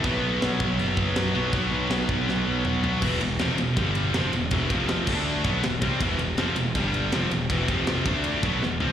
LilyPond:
<<
  \new Staff \with { instrumentName = "Distorted electric guitar" } { \clef bass \time 4/4 \key b \phrygian \tempo 4 = 161 <b, fis b>2.~ <b, fis b>8 <b, fis b>8 | <b, fis b>2.~ <b, fis b>8 <b, fis b>8 | <e, b, e>8 <e, b,>8 <f, c f>8 <e, b,>8 <g, d g>4 <f, c f>8 <e, b,>8 | <e, b, e>8 <f, c f>4 <d a d'>4 <b, fis b>8 <e, b,>8 <c g c'>8 |
<e, b, e>8 <e, b,>8 <f, c f>8 <e, b,>8 <g, d g>4 <f, c f>8 <e, b,>8 | <e, b, e>8 <f, c f>4 <d a d'>4 <b, fis b>8 <e, b,>8 <c g c'>8 | }
  \new Staff \with { instrumentName = "Distorted electric guitar" } { \clef bass \time 4/4 \key b \phrygian <b, fis b>1 | <b, fis b>1 | <e, b, e>8 <e, b,>8 <f, c f>8 <e, b,>8 <g, d g>4 <f, c f>8 <e, b,>8 | <e, b, e>8 <f, c f>4 <d a d'>4 <b, fis b>8 <e, b,>8 <c g c'>8 |
<e, b, e>8 <e, b,>8 <f, c f>8 <e, b,>8 <g, d g>4 <f, c f>8 <e, b,>8 | <e, b, e>8 <f, c f>4 <d a d'>4 <b, fis b>8 <e, b,>8 <c g c'>8 | }
  \new Staff \with { instrumentName = "Overdriven electric guitar" } { \clef bass \time 4/4 \key b \phrygian <b, fis b>2.~ <b, fis b>8 <b, fis b>8 | <b, fis b>2.~ <b, fis b>8 <b, fis b>8 | <e, b, e>8 <e, b,>8 <f, c f>8 <e, b,>8 <g, d g>4 <f, c f>8 <e, b,>8 | <e, b, e>8 <f, c f>4 <d a d'>4 <b, fis b>8 <e, b,>8 <c g c'>8 |
<e, b, e>8 <e, b,>8 <f, c f>8 <e, b,>8 <g, d g>4 <f, c f>8 <e, b,>8 | <e, b, e>8 <f, c f>4 <d a d'>4 <b, fis b>8 <e, b,>8 <c g c'>8 | }
  \new Staff \with { instrumentName = "Picked electric bass" } { \clef bass \time 4/4 \key b \phrygian b,,8 b,,8 b,,8 b,,8 fis,,4 fis,8 b,,8 | b,,8 b,,8 b,,8 b,,8 b,,8 b,,8 b,,4 | e,,8 e,,8 f,,8 e,,8 g,,4 f,,8 e,,8 | e,,8 f,,4 d,4 b,,8 e,,8 c,8 |
e,,8 e,,8 f,,8 e,,8 g,,4 f,,8 e,,8 | e,,8 f,,4 d,4 b,,8 e,,8 c,8 | }
  \new DrumStaff \with { instrumentName = "Drums" } \drummode { \time 4/4 <cymc bd>4 <cymc sn>8 bd8 cymc8 bd8 <cymc sn>4 | <cymc bd>4 <cymc sn>8 bd8 sn4 toml8 tomfh8 | <cymc bd>8 cymr8 <cymr sn>8 cymr8 <bd cymr>8 cymr8 <cymr sn>8 cymr8 | <bd cymr>8 <bd cymr>8 <cymr sn>8 <cymc bd>8 r8 <bd cymr>8 <cymr sn>8 <bd cymr>8 |
<bd cymr>8 cymr8 <cymr sn>8 cymr8 <bd cymr>8 cymr8 <cymr sn>8 cymr8 | <bd cymr>8 <bd cymr>8 <cymr sn>8 <bd cymr>8 cymr8 <bd cymr>8 sn8 tomfh8 | }
>>